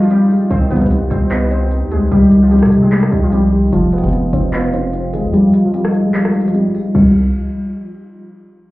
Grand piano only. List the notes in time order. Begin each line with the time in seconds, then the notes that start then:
Already playing: D#3 F3 C4 D#4 F4
0.10 C4
0.30 G#3
0.51 D#3
0.70 G3
0.91 C4
1.11 D#4
1.31 D#5
1.51 D#4
1.71 C4
1.91 G3
2.12 D#3
2.32 G3
2.52 C4
2.73 D#4
2.92 D#5
3.13 D#4
3.32 C4
3.52 G3
3.72 F3
3.93 G#3
4.13 C4
4.33 D#4
4.53 F4
4.74 D#4
4.94 C4
5.14 D#3
5.34 F3
5.74 C4
5.94 D#4
6.14 F4
6.35 D#4
6.54 C4
6.74 G#3
6.95 D#3 G3 C4 D#4